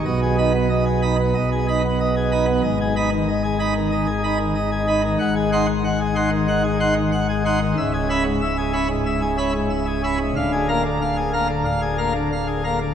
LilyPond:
<<
  \new Staff \with { instrumentName = "Pipe organ" } { \time 4/4 \key gis \minor \tempo 4 = 93 << { dis''16 gis'16 <dis'' b''>16 b16 dis''16 gis'16 <dis'' b''>16 b16 dis''16 gis'16 <dis'' b''>16 b16 dis''16 gis'16 <dis'' b''>16 b16 | dis''16 gis'16 <dis'' b''>16 dis16 dis''16 gis'16 <dis'' b''>16 dis16 dis''16 gis'16 <dis'' b''>16 dis16 dis''16 gis'16 <dis'' b''>16 dis16 | fis''16 gis'16 <fis'' bis''>16 dis16 fis''16 gis'16 <fis'' bis''>16 dis16 fis''16 gis'16 <fis'' bis''>16 dis16 fis''16 gis'16 <fis'' bis''>16 dis16 | e''16 gis'16 <e'' b''>16 gis,16 e''16 gis'16 <e'' b''>16 gis,16 e''16 gis'16 <e'' b''>16 gis,16 e''16 gis'16 <e'' b''>16 gis,16 |
eis''16 gis'16 <eis'' ais''>16 d16 eis''16 gis'16 <eis'' ais''>16 d16 eis''16 gis'16 <eis'' ais''>16 d16 eis''16 gis'16 <eis'' ais''>16 d16 | } \\ { b,8 dis'16 r8. dis'16 r16 b,8 dis'16 r8. dis'16 r16 | gis,8 dis'16 r8. dis'16 r16 dis16 r16 dis'16 r8. dis'16 r16 | gis,8 dis'16 r8. dis'16 r16 dis16 r16 dis'16 r8. dis'16 r16 | cis,8 cis'16 r8. cis'16 r16 gis,16 r16 cis'16 r8. cis'16 r16 |
d,8 ais16 r8. ais16 r16 d,8 ais16 r8. ais16 r16 | } >> }
  \new Staff \with { instrumentName = "Pipe organ" } { \clef bass \time 4/4 \key gis \minor b,,2 b,,2 | gis,,1 | gis,,1 | cis,,1 |
d,,2 d,,2 | }
>>